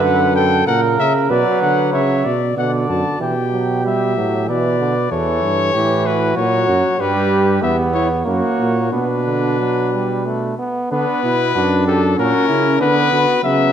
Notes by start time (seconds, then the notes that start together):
Already playing: D3 B4
0.04 F#2 F#5
0.35 A4 G5
0.66 A#2 C#3 A#4 F#5
0.99 C#3 E5
1.29 B2 F#3 B4 D5
1.62 D3 F#5
1.93 C#3 C#5 E5
2.25 B2 D5
2.55 B2 D3 D5 F#5
2.89 F#2 A5
3.20 B2 E3 G4 G5
3.52 F#3
3.85 G3 E5
4.17 A2 F#3
4.48 B2 E3 B4 D5
4.79 D3
5.11 E2 E3 A4 C#5
5.43 G2
5.73 A2 E3 G4
6.06 F#4 B4
6.37 A#2 F#3 C#5
6.68 F#2
6.98 G2 G3 G4 B4
7.62 E2 B3 E5
7.94 E4 C#5
8.26 F#2 A#3 F#4 C#5
8.60 A#2
8.91 B2 B3 D4 B4
9.26 D3
9.59 F#3
9.92 G3
10.26 A3
10.59 B3
10.91 D3 B3 D4 B4
11.23 B2 E4
11.55 F#2 D4 F#4
11.87 G4 A4
12.17 A#2 C#4 F#4 A#4
12.47 C#3 E4
12.80 D3 B3 D4 B4
13.12 D3 F#4
13.42 C#3 F#3 B3 E5